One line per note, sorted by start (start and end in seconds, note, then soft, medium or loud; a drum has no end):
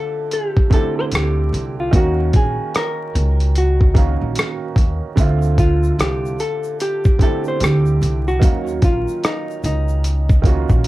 0.00 0.70 D3 medium
0.00 0.71 A3 medium
0.00 0.72 C4 medium
0.00 1.95 F4 medium
0.00 0.33 A4 medium
0.00 1.95 E5 medium
0.32 0.74 G4 loud
0.32 closed hi-hat medium
0.57 kick medium
0.70 1.57 D3 medium
0.70 1.58 A3 medium
0.70 1.58 C4 medium
0.70 1.59 E4 medium
0.70 0.98 A4 medium
0.70 kick medium
0.70 closed hi-hat medium
0.75 1.59 G4 medium
0.99 1.04 C5 medium
1.12 1.48 D2 medium
1.12 1.80 G4 medium
1.12 cross-stick loud
1.12 closed hi-hat medium
1.53 1.89 C2 medium
1.53 closed hi-hat medium
1.80 1.93 F4 medium
1.91 2.29 D#2 medium
1.91 3.08 D#3 medium
1.91 3.08 A#3 medium
1.91 3.09 C#4 medium
1.91 3.10 F5 medium
1.91 kick loud
1.91 closed hi-hat medium
1.96 2.36 F#4 medium
1.96 3.10 F#4 medium
2.33 2.56 A#1 medium
2.33 2.76 G#4 medium
2.33 kick loud
2.33 closed hi-hat medium
2.75 3.59 A#4 loud
2.75 cross-stick loud
2.75 closed hi-hat medium
3.15 4.17 C#2 medium
3.15 closed hi-hat medium
3.40 closed hi-hat soft
3.55 4.74 F#4 medium
3.55 closed hi-hat medium
3.81 kick medium
3.94 4.81 D#3 medium
3.94 4.82 A#3 medium
3.94 4.83 C#4 medium
3.94 4.83 F5 medium
3.94 kick medium
3.94 closed hi-hat medium
3.99 4.84 F#4 medium
4.21 4.35 A#1 medium
4.35 cross-stick loud
4.35 closed hi-hat medium
4.76 4.99 D#2 medium
4.76 kick medium
4.76 closed hi-hat medium
5.16 5.90 D2 loud
5.16 6.32 D3 medium
5.16 6.33 A3 medium
5.16 6.33 C4 medium
5.16 kick loud
5.16 closed hi-hat medium
5.16 shaker medium
5.20 6.35 F4 medium
5.20 6.34 E5 medium
5.42 shaker soft
5.58 6.00 F4 medium
5.58 kick medium
5.58 closed hi-hat medium
5.58 shaker medium
5.83 shaker medium
5.99 6.35 C2 medium
5.99 6.41 G4 medium
5.99 cross-stick loud
5.99 closed hi-hat medium
5.99 shaker medium
6.25 shaker soft
6.39 6.77 A4 medium
6.39 closed hi-hat medium
6.39 shaker medium
6.64 shaker medium
6.80 7.22 G4 loud
6.80 closed hi-hat medium
6.80 shaker medium
7.05 kick loud
7.05 shaker medium
7.19 8.06 D3 medium
7.19 8.06 A3 medium
7.19 8.07 C4 medium
7.19 8.07 E4 medium
7.19 7.47 A4 medium
7.19 kick medium
7.19 closed hi-hat medium
7.19 shaker soft
7.24 8.08 G4 medium
7.45 7.63 C5 medium
7.45 shaker soft
7.60 7.97 D2 medium
7.60 8.28 G4 medium
7.60 cross-stick loud
7.60 closed hi-hat medium
7.60 shaker medium
7.86 shaker soft
8.01 8.37 C2 medium
8.01 closed hi-hat medium
8.01 shaker soft
8.28 8.84 F#4 loud
8.28 shaker soft
8.39 8.78 D#2 medium
8.39 9.56 D#3 medium
8.39 9.57 A#3 medium
8.39 9.57 C#4 medium
8.39 9.58 F5 medium
8.39 kick loud
8.39 closed hi-hat medium
8.39 shaker medium
8.44 9.58 F#3 medium
8.67 shaker medium
8.82 9.05 A#1 medium
8.82 9.25 F4 medium
8.82 kick medium
8.82 closed hi-hat medium
8.82 shaker soft
9.08 shaker medium
9.24 9.64 D#4 medium
9.24 cross-stick medium
9.24 closed hi-hat medium
9.24 shaker medium
9.50 shaker soft
9.64 10.66 C#2 medium
9.64 10.42 D#4 medium
9.64 closed hi-hat medium
9.64 shaker medium
9.88 shaker medium
10.04 closed hi-hat medium
10.04 shaker medium
10.29 kick loud
10.29 shaker soft
10.42 10.88 D#3 medium
10.42 10.88 A#3 medium
10.42 10.88 C#4 medium
10.42 10.88 F4 medium
10.42 kick medium
10.42 closed hi-hat medium
10.42 shaker soft
10.47 10.88 F#4 medium
10.69 10.83 A#1 medium
10.69 kick medium
10.69 shaker soft
10.84 closed hi-hat medium